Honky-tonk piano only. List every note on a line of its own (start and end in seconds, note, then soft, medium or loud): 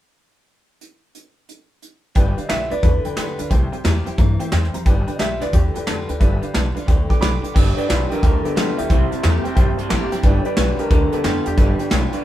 2.16 2.29 B4 loud
2.16 2.29 D5 loud
2.16 2.29 G5 loud
2.37 2.44 B4 medium
2.37 2.45 D5 medium
2.37 2.45 F5 medium
2.49 2.62 B4 medium
2.49 2.63 D5 medium
2.49 2.63 F5 medium
2.71 2.79 B4 medium
2.71 2.79 D5 medium
2.71 2.79 E5 medium
2.84 2.97 B4 medium
2.84 2.97 D5 medium
2.84 2.97 A5 medium
3.05 3.12 B4 medium
3.05 3.12 D5 medium
3.05 3.12 G5 loud
3.17 3.31 B4 medium
3.17 3.30 D5 medium
3.17 3.31 G5 loud
3.39 3.46 B4 medium
3.39 3.46 D5 medium
3.39 3.46 F5 medium
3.50 3.64 C5 loud
3.50 3.64 E5 medium
3.50 3.64 G5 loud
3.72 3.79 C5 medium
3.72 3.80 E5 medium
3.72 3.80 G5 medium
3.84 3.97 C5 medium
3.84 3.98 E5 medium
3.84 3.97 A#5 loud
4.06 4.14 C5 medium
4.06 4.13 E5 medium
4.06 4.13 G5 medium
4.18 4.31 C5 medium
4.18 4.31 E5 medium
4.18 4.32 A#5 medium
4.40 4.47 C5 loud
4.40 4.47 E5 loud
4.40 4.47 G5 loud
4.52 4.65 C5 loud
4.52 4.65 E5 medium
4.52 4.65 G5 loud
4.74 4.81 C5 medium
4.74 4.81 E5 medium
4.74 4.81 A#5 loud
4.86 4.99 B4 loud
4.86 4.99 D5 loud
4.86 4.99 G5 loud
5.07 5.14 B4 medium
5.07 5.15 D5 medium
5.07 5.15 G5 medium
5.19 5.32 B4 medium
5.19 5.33 D5 medium
5.19 5.33 G5 medium
5.41 5.48 B4 medium
5.41 5.48 D5 medium
5.41 5.49 F5 medium
5.54 5.66 B4 medium
5.54 5.66 D5 medium
5.54 5.66 G5 medium
5.76 5.83 B4 medium
5.76 5.83 D5 medium
5.76 5.83 G5 loud
5.88 6.00 B4 medium
5.88 6.00 D5 medium
5.88 6.00 A5 medium
6.09 6.16 B4 medium
6.09 6.16 D5 medium
6.09 6.16 G5 medium
6.20 6.33 B4 loud
6.20 6.33 D5 loud
6.20 6.33 E5 loud
6.42 6.49 B4 medium
6.42 6.49 D5 medium
6.42 6.49 F5 medium
6.53 6.67 B4 medium
6.53 6.67 D5 medium
6.53 6.67 A5 medium
6.75 6.82 B4 medium
6.75 6.83 D5 medium
6.75 6.83 F5 medium
6.87 7.01 B4 medium
6.87 7.01 D5 medium
6.87 7.01 G5 loud
7.09 7.16 B4 medium
7.09 7.17 D5 medium
7.09 7.17 G5 loud
7.21 7.34 B4 medium
7.21 7.34 D5 medium
7.21 7.35 G5 medium
7.43 7.50 B4 medium
7.43 7.50 D5 medium
7.43 7.50 G5 medium
7.54 7.68 B4 loud
7.54 7.68 D5 medium
7.54 7.68 G5 loud
7.77 7.84 B4 medium
7.77 7.84 D5 medium
7.77 7.84 G5 medium
7.88 8.02 B4 medium
7.88 8.01 D5 medium
7.88 8.02 F5 medium
8.10 8.17 B4 medium
8.10 8.17 D5 medium
8.10 8.17 G5 medium
8.22 8.35 B4 medium
8.22 8.36 D5 medium
8.22 8.35 G5 loud
8.44 8.51 B4 medium
8.44 8.51 D5 medium
8.44 8.51 E5 medium
8.56 8.69 B4 medium
8.56 8.69 E5 medium
8.77 8.85 B4 medium
8.77 8.84 D5 medium
8.77 8.84 G5 medium
8.89 9.02 C5 medium
8.89 9.02 E5 medium
8.89 9.02 G5 loud
9.11 9.18 C5 medium
9.11 9.18 E5 medium
9.11 9.18 A5 medium
9.22 9.36 C5 medium
9.22 9.36 E5 medium
9.22 9.36 A#5 medium
9.44 9.51 C5 medium
9.44 9.51 E5 medium
9.44 9.51 G5 loud
9.55 9.69 C5 loud
9.55 9.69 E5 loud
9.55 9.69 G5 loud
9.77 9.85 C5 medium
9.77 9.85 E5 medium
9.77 9.85 A5 medium
9.89 10.02 C5 medium
9.89 10.03 E5 medium
9.89 10.03 A5 medium
10.12 10.19 C5 medium
10.12 10.19 E5 medium
10.12 10.19 G5 loud
10.23 10.36 B4 loud
10.23 10.37 D5 loud
10.23 10.37 G5 loud
10.46 10.53 B4 medium
10.46 10.52 D5 medium
10.46 10.53 G5 medium
10.57 10.70 B4 medium
10.57 10.70 D5 medium
10.57 10.70 G5 medium
10.79 10.86 B4 medium
10.79 10.86 D5 medium
10.79 10.86 G5 medium
10.90 11.03 B4 medium
10.90 11.03 D5 medium
10.90 11.03 A5 loud
11.12 11.19 B4 medium
11.12 11.19 D5 medium
11.12 11.19 A5 medium
11.24 11.37 B4 medium
11.24 11.37 D5 medium
11.24 11.37 G5 medium
11.45 11.53 B4 medium
11.45 11.53 D5 medium
11.45 11.53 G5 medium
11.57 11.70 B4 loud
11.57 11.70 D5 medium
11.57 11.70 A5 loud
11.79 11.86 B4 medium
11.79 11.86 D5 medium
11.79 11.86 G5 medium
11.91 12.04 B4 loud
11.91 12.04 D5 medium
11.91 12.04 G5 loud
12.13 12.20 B4 medium
12.13 12.20 D5 medium
12.13 12.20 F5 medium